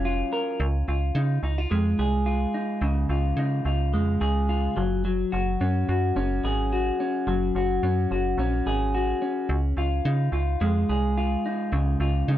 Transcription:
Already playing: F1 F#3 C#4 A#4
0.05 F4
0.33 A#4
0.60 C#2
0.88 C#2 F4
1.15 C#3 D#4
1.43 C#2 D#4
1.58 F4
1.71 F2 G#3
1.99 C2 G#4
2.26 F4
2.54 D#4
2.82 C#2 C#3
3.09 C#2 F4
3.37 C#3 D#4
3.65 C#2 F4
3.94 F2 G#3
4.21 C#2 G#4
4.49 F4
4.76 F#1 F#3
5.05 F#3
5.32 F#1 F#4
5.61 F#2 C#4
5.89 F#2 F#4
6.16 F#1 C#4
6.44 G#1 G#4
6.73 F#4
7.00 C#4
7.27 F#1 F#3
7.55 F#1 F#4
7.83 F#2 C#4
8.11 F#1 F#4
8.38 A#1 C#4
8.66 G#1 G#4
8.94 F#4
9.22 C#4
9.49 C#2
9.77 C#2 F4
10.05 C#3 D#4
10.32 C#2 F4
10.61 F2 G#3
10.89 C2 G#4
11.18 F4
11.46 D#4
11.72 C#2 C#3
12.00 C#2 F4
12.28 C#3 D#4

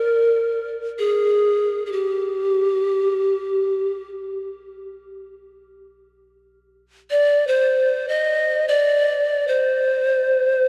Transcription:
Already playing: A#4 F6
0.99 G#4
1.86 G#4
1.92 G4
7.11 D5
7.48 C5
8.08 D#5
8.68 D5
9.48 C5

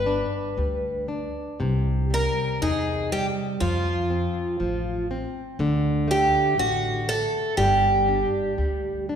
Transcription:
Already playing: G1 G3 B4
0.06 D4
0.57 D2 G3
1.08 D4
1.60 C2 C3
2.10 G3 A#4
2.62 E2 D#4 G#4
3.12 G3 G4
3.60 F2 F3 F4
4.10 C4
4.60 A1 F3
5.11 C4
5.59 D2 D3
6.08 A3 G4
6.58 A1 D3 F#4
7.08 A3 A4
7.57 G1 G3 G4
8.08 D4
8.58 D2 G3
9.09 D4

